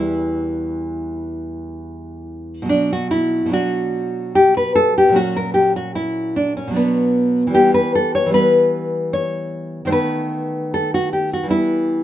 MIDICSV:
0, 0, Header, 1, 2, 480
1, 0, Start_track
1, 0, Key_signature, 2, "minor"
1, 0, Tempo, 960000
1, 430, Tempo, 918836
1, 1390, Time_signature, 3, 2, 24, 8
1, 1390, Tempo, 831025
1, 2350, Tempo, 803213
1, 4270, Tempo, 790514
1, 6979, End_track
2, 0, Start_track
2, 0, Title_t, "Nylon-string guitar"
2, 0, Program_c, 0, 24
2, 0, Note_on_c, 0, 40, 55
2, 0, Note_on_c, 0, 52, 44
2, 0, Note_on_c, 0, 55, 44
2, 0, Note_on_c, 0, 64, 77
2, 1138, Note_off_c, 0, 64, 0
2, 1350, Note_off_c, 0, 40, 0
2, 1350, Note_on_c, 0, 47, 61
2, 1359, Note_off_c, 0, 52, 0
2, 1365, Note_off_c, 0, 55, 0
2, 1366, Note_on_c, 0, 54, 54
2, 1388, Note_on_c, 0, 62, 104
2, 1510, Note_off_c, 0, 62, 0
2, 1522, Note_on_c, 0, 66, 96
2, 1625, Note_off_c, 0, 66, 0
2, 1627, Note_on_c, 0, 64, 90
2, 1821, Note_off_c, 0, 47, 0
2, 1828, Note_on_c, 0, 47, 66
2, 1839, Note_off_c, 0, 54, 0
2, 1846, Note_on_c, 0, 54, 50
2, 1859, Note_off_c, 0, 64, 0
2, 1863, Note_on_c, 0, 62, 52
2, 1873, Note_on_c, 0, 66, 98
2, 2331, Note_off_c, 0, 66, 0
2, 2346, Note_on_c, 0, 67, 99
2, 2469, Note_off_c, 0, 67, 0
2, 2476, Note_on_c, 0, 71, 91
2, 2584, Note_off_c, 0, 71, 0
2, 2586, Note_on_c, 0, 69, 100
2, 2708, Note_off_c, 0, 69, 0
2, 2719, Note_on_c, 0, 67, 89
2, 2785, Note_off_c, 0, 47, 0
2, 2785, Note_on_c, 0, 46, 60
2, 2794, Note_off_c, 0, 54, 0
2, 2802, Note_on_c, 0, 54, 53
2, 2803, Note_off_c, 0, 62, 0
2, 2817, Note_on_c, 0, 61, 51
2, 2827, Note_on_c, 0, 66, 100
2, 2834, Note_off_c, 0, 67, 0
2, 2947, Note_off_c, 0, 66, 0
2, 2950, Note_on_c, 0, 70, 93
2, 3053, Note_off_c, 0, 70, 0
2, 3055, Note_on_c, 0, 67, 92
2, 3181, Note_off_c, 0, 67, 0
2, 3188, Note_on_c, 0, 66, 91
2, 3300, Note_off_c, 0, 66, 0
2, 3303, Note_on_c, 0, 64, 98
2, 3537, Note_off_c, 0, 64, 0
2, 3547, Note_on_c, 0, 62, 88
2, 3662, Note_off_c, 0, 61, 0
2, 3667, Note_off_c, 0, 62, 0
2, 3670, Note_on_c, 0, 61, 77
2, 3733, Note_on_c, 0, 47, 58
2, 3744, Note_off_c, 0, 46, 0
2, 3747, Note_off_c, 0, 54, 0
2, 3754, Note_on_c, 0, 54, 50
2, 3767, Note_off_c, 0, 61, 0
2, 3770, Note_on_c, 0, 62, 50
2, 3785, Note_on_c, 0, 59, 82
2, 4206, Note_off_c, 0, 54, 0
2, 4208, Note_on_c, 0, 52, 63
2, 4222, Note_off_c, 0, 59, 0
2, 4224, Note_on_c, 0, 55, 50
2, 4226, Note_off_c, 0, 47, 0
2, 4242, Note_off_c, 0, 62, 0
2, 4245, Note_on_c, 0, 59, 52
2, 4254, Note_on_c, 0, 67, 104
2, 4371, Note_off_c, 0, 67, 0
2, 4374, Note_on_c, 0, 71, 91
2, 4499, Note_off_c, 0, 71, 0
2, 4501, Note_on_c, 0, 69, 100
2, 4618, Note_off_c, 0, 69, 0
2, 4620, Note_on_c, 0, 73, 99
2, 4681, Note_off_c, 0, 52, 0
2, 4688, Note_on_c, 0, 52, 61
2, 4699, Note_off_c, 0, 55, 0
2, 4706, Note_on_c, 0, 55, 55
2, 4718, Note_off_c, 0, 59, 0
2, 4725, Note_on_c, 0, 59, 49
2, 4733, Note_off_c, 0, 73, 0
2, 4736, Note_on_c, 0, 71, 97
2, 5197, Note_off_c, 0, 71, 0
2, 5217, Note_on_c, 0, 73, 94
2, 5645, Note_off_c, 0, 73, 0
2, 5650, Note_off_c, 0, 52, 0
2, 5653, Note_on_c, 0, 51, 60
2, 5663, Note_off_c, 0, 55, 0
2, 5665, Note_on_c, 0, 72, 75
2, 5671, Note_on_c, 0, 57, 55
2, 5672, Note_off_c, 0, 59, 0
2, 5686, Note_on_c, 0, 59, 52
2, 5695, Note_off_c, 0, 72, 0
2, 5698, Note_on_c, 0, 71, 101
2, 6172, Note_off_c, 0, 71, 0
2, 6193, Note_on_c, 0, 69, 101
2, 6314, Note_off_c, 0, 69, 0
2, 6316, Note_on_c, 0, 66, 90
2, 6426, Note_off_c, 0, 66, 0
2, 6429, Note_on_c, 0, 67, 88
2, 6551, Note_off_c, 0, 67, 0
2, 6554, Note_on_c, 0, 66, 88
2, 6612, Note_off_c, 0, 57, 0
2, 6614, Note_on_c, 0, 52, 61
2, 6621, Note_off_c, 0, 51, 0
2, 6631, Note_on_c, 0, 55, 50
2, 6637, Note_off_c, 0, 59, 0
2, 6649, Note_on_c, 0, 59, 50
2, 6655, Note_off_c, 0, 66, 0
2, 6658, Note_on_c, 0, 64, 89
2, 6979, Note_off_c, 0, 52, 0
2, 6979, Note_off_c, 0, 55, 0
2, 6979, Note_off_c, 0, 59, 0
2, 6979, Note_off_c, 0, 64, 0
2, 6979, End_track
0, 0, End_of_file